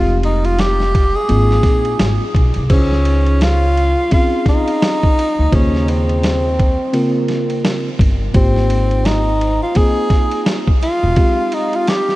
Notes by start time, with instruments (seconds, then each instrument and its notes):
Already playing: upright bass F1, tine electric piano G#3 C4 D#4 F4 G4, tenor saxophone F4
0.23 tenor saxophone D#4, ride
0.45 tenor saxophone F4, ride
0.59 tenor saxophone G4, snare, hi-hat pedal, ride
0.80 snare
0.95 kick, ride
1.16 tenor saxophone G#4
1.28 upright bass G#1, tine electric piano A#3 C4 D#4 F4 G#4, ride
1.51 snare
1.63 upright bass A#1, kick, snare, ride
1.85 ride
1.99 upright bass G#1, snare, hi-hat pedal, ride
2.35 upright bass B1, kick, ride
2.54 upright bass C2, ride
2.70 upright bass C#2, tine electric piano C#4 D#4 E4 G#4 C5, tenor saxophone C#4, kick, crash, ride
2.77 tine electric piano F4
2.92 snare
3.05 ride
3.26 ride
3.41 tenor saxophone F4, snare, hi-hat pedal, ride
3.77 ride
4.11 tine electric piano C4 C#4 D#4 F4 G#4, tenor saxophone F4, kick, ride
4.46 tenor saxophone D#4, kick, snare, ride
4.68 ride
4.82 snare, hi-hat pedal, ride
5.03 kick
5.19 ride
5.39 upright bass D2
5.51 upright bass D#2, tine electric piano C#3 A#3 F4 G#4 C5, tenor saxophone C#4, kick, ride
5.75 snare
5.88 tenor saxophone C4, ride
6.09 ride
6.23 snare, hi-hat pedal, ride
6.59 kick, ride
6.93 tine electric piano C#3 A#3 C4 F4 A#4, ride
7.28 snare, ride
7.50 ride
7.65 snare, hi-hat pedal, ride
7.99 upright bass G1, kick, ride
8.33 upright bass G#1, tine electric piano A#3 C4 D#4 F4 G4, tenor saxophone C4, kick, ride
8.56 snare
8.70 ride
8.91 ride
9.05 tenor saxophone D#4, snare, hi-hat pedal, ride
9.41 ride
9.63 tenor saxophone F4
9.75 tine electric piano A#3 C4 D#4 F4 G#4, tenor saxophone G#4, kick, ride
10.10 kick, snare, ride
10.31 ride
10.46 snare, hi-hat pedal, ride
10.67 kick
10.83 tenor saxophone F4, ride
11.03 upright bass E1
11.16 tine electric piano G#3 C4 D#4 F4 G4, kick, ride
11.52 tenor saxophone D#4, ride
11.73 tenor saxophone F4, ride
11.87 tenor saxophone G4, snare, hi-hat pedal, ride
12.09 snare